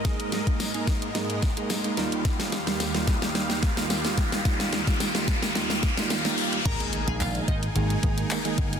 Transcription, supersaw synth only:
\new Staff \with { instrumentName = "Supersaw synth" } { \time 4/4 \key ees \mixolydian \tempo 4 = 109 <aes, aes bes' ees''>2.~ <aes, aes bes' ees''>8 <ees, ees g' f''>8~ | <ees, ees g' f''>1~ | <ees, ees g' f''>1 | <ees' aes' bes' aes''>1 | }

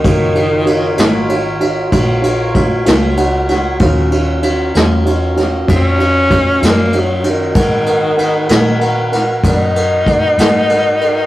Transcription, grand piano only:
\new Staff \with { instrumentName = "Grand piano" } { \time 12/8 \key ees \minor \tempo 4. = 64 <ges' des'' f''>8 <ges' des'' f''>8 <ges' des'' f''>8 <ges' des'' f''>8 <ges' des'' f''>8 <ges' des'' f''>8 <ges' des'' f''>8 <ges' des'' f''>8 <ges' des'' f''>8 <ges' des'' f''>8 <ges' des'' ges''>8 <ges' des'' ges''>8 | <ges' des'' f''>8 <ges' des'' f''>8 <ges' des'' f''>8 <ges' des'' f''>8 <ges' des'' f''>8 <ges' des'' f''>8 <ges' des'' f''>8 <ges' des'' f''>8 <ges' des'' f''>8 <ges' des'' f''>8 <ges' des'' f''>8 <ges' des'' f''>8 | <bes' ces'' ges''>8 <bes' ces'' ges''>8 <bes' ces'' ges''>8 <bes' ces'' ges''>8 <bes' ces'' ges''>8 <bes' ces'' ges''>8 <bes' ces'' ges''>8 <bes' ces'' ges''>8 <bes' ces'' ges''>8 <bes' ces'' ges''>8 <bes' ces'' ges''>8 <bes' ces'' ees''>8 | }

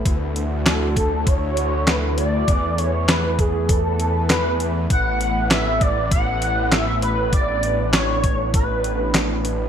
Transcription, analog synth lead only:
\new Staff \with { instrumentName = "Analog synth lead" } { \time 4/4 \key a \major \tempo 4 = 99 r4 a'4 cis''4 b'8 d''8~ | d''8 cis''8 b'8 gis'8 a'4 b'8. r16 | fis''4 e''8 d''8 fis''4 e''8 b'8 | d''4 cis''4 b'4. r8 | }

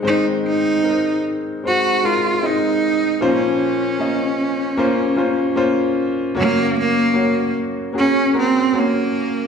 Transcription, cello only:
\new Staff \with { instrumentName = "Cello" } { \time 4/4 \key aes \mixolydian \tempo 4 = 76 ees'8 ees'4 r8 ges'8 f'8 ees'4 | des'2. r4 | bes8 bes4 r8 des'8 c'8 bes4 | }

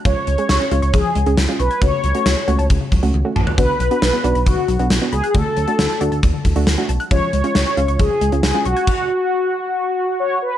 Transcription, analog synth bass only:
\new Staff \with { instrumentName = "Analog synth bass" } { \clef bass \time 4/4 \key cis \phrygian \tempo 4 = 136 cis,16 r16 cis,16 r16 cis,16 r16 cis,16 cis,16 cis,16 r16 cis,16 cis,16 cis,16 r16 b,,16 r16 | cis,16 r16 cis,16 r16 cis,16 r16 cis,16 cis,16 cis,16 r16 cis,16 cis,16 cis,16 r16 a,,16 r16 | b,,16 r16 b,,16 r16 b,,16 r16 b,,16 b,,16 b,,16 r16 b,,16 b,,16 b,,16 r16 cis,16 r16 | d,16 r16 d,16 r16 d,16 r16 d,16 d,16 d,16 r16 d,16 d,16 d,16 r16 b,,16 r16 |
cis,16 r16 cis,16 r16 cis,16 r16 cis,16 cis,16 cis,16 r16 cis,16 cis,16 cis,16 r16 b,,16 r16 | r1 | }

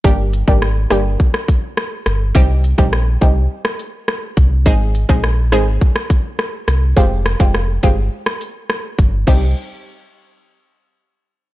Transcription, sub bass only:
\new Staff \with { instrumentName = "Sub bass" } { \clef bass \time 4/4 \key c \minor \tempo 4 = 104 g,,8. aes,,8. g,,8 r4. g,,8 | c,8. bes,,8. c,8 r4. c,8 | aes,,8. bes,,8. aes,,8 r4. c,8 | f,,8. f,,8. g,,8 r4. g,,8 |
c,8 r2. r8 | }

